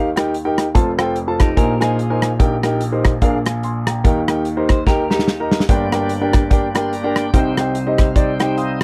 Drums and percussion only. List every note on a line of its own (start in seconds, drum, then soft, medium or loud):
0.17 cross-stick loud
0.17 closed hi-hat medium
0.34 closed hi-hat medium
0.58 cross-stick loud
0.58 closed hi-hat medium
0.75 kick loud
0.75 closed hi-hat medium
0.99 cross-stick loud
0.99 closed hi-hat medium
1.16 closed hi-hat medium
1.40 kick medium
1.40 cross-stick loud
1.40 closed hi-hat medium
1.57 kick medium
1.57 closed hi-hat medium
1.81 cross-stick loud
1.81 closed hi-hat medium
1.99 closed hi-hat medium
2.22 cross-stick loud
2.22 closed hi-hat medium
2.40 kick loud
2.40 closed hi-hat medium
2.63 cross-stick loud
2.63 closed hi-hat medium
2.81 closed hi-hat loud
3.05 kick medium
3.05 cross-stick loud
3.05 closed hi-hat medium
3.22 kick medium
3.22 closed hi-hat medium
3.46 cross-stick loud
3.46 closed hi-hat medium
3.63 closed hi-hat medium
3.87 cross-stick loud
3.87 closed hi-hat medium
4.05 kick loud
4.05 closed hi-hat medium
4.28 cross-stick loud
4.28 closed hi-hat medium
4.45 closed hi-hat medium
4.69 kick medium
4.69 cross-stick loud
4.69 closed hi-hat medium
4.87 kick medium
4.87 snare soft
5.11 snare medium
5.19 snare medium
5.28 snare medium
5.51 snare medium
5.60 snare medium
5.69 kick loud
5.69 closed hi-hat medium
5.92 cross-stick loud
5.92 closed hi-hat medium
6.09 closed hi-hat medium
6.33 kick medium
6.33 cross-stick loud
6.33 closed hi-hat medium
6.51 kick loud
6.51 closed hi-hat medium
6.75 cross-stick loud
6.75 closed hi-hat medium
6.93 closed hi-hat medium
7.16 cross-stick loud
7.16 closed hi-hat medium
7.34 kick loud
7.34 closed hi-hat medium
7.57 cross-stick loud
7.57 closed hi-hat medium
7.75 closed hi-hat loud
7.98 kick medium
7.98 cross-stick loud
7.98 closed hi-hat medium
8.16 kick medium
8.16 closed hi-hat medium
8.40 cross-stick loud
8.40 closed hi-hat medium
8.58 closed hi-hat medium